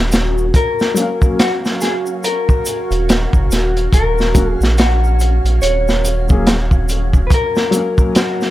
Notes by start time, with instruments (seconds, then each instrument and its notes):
Already playing: analog synth bass D#1, synth texture C#4 A#4, analog synth pad F#4
0.12 snare, closed hi-hat, shaker
0.38 shaker
0.54 clean electric guitar A#4, synth texture F5, kick, closed hi-hat, shaker
0.79 snare, shaker
0.94 felt piano F#3 A#3, closed hi-hat, shaker
0.99 felt piano C#4 F5
1.22 kick, shaker
1.39 clean electric guitar F#4, snare, closed hi-hat, shaker
1.65 snare, shaker
1.81 clean electric guitar G#4, snare, closed hi-hat, shaker
2.06 shaker
2.23 clean electric guitar A#4, closed hi-hat, shaker
2.49 kick, shaker
2.65 closed hi-hat, shaker
2.91 analog synth bass D#1, closed hi-hat, shaker
3.09 snare, closed hi-hat, shaker
3.33 analog synth bass F#1, kick, shaker
3.50 analog synth bass D#1, snare, closed hi-hat, shaker
3.77 closed hi-hat, shaker
3.93 analog synth bass D#1, clean electric guitar A#4, kick, closed hi-hat, shaker
4.18 snare, shaker
4.34 felt piano F#3 A#3 C#4 F#4, kick, closed hi-hat, shaker
4.51 clean electric guitar G#4
4.60 analog synth bass A#1, snare, shaker
4.78 clean electric guitar F#4, snare, closed hi-hat, shaker
5.04 shaker
5.20 closed hi-hat, shaker
5.44 analog synth bass A#1, closed hi-hat, shaker
5.62 analog synth bass D#1, clean electric guitar C#5, closed hi-hat, shaker
5.88 snare, shaker
6.05 closed hi-hat, shaker
6.28 felt piano F#3 A#3 C#4 G#4, kick, shaker
6.47 snare, closed hi-hat, shaker
6.71 kick, shaker
6.89 closed hi-hat, shaker
7.13 kick, shaker
7.27 clean electric guitar B4, kick, shaker
7.31 analog synth pad F#3, synth texture A#4, clean electric guitar A#4, closed hi-hat
7.55 snare, shaker
7.71 felt piano F#3 A#3, closed hi-hat, shaker
7.76 felt piano C#4 F5
7.98 kick, shaker
8.15 clean electric guitar F#4, snare, closed hi-hat, shaker
8.41 snare, shaker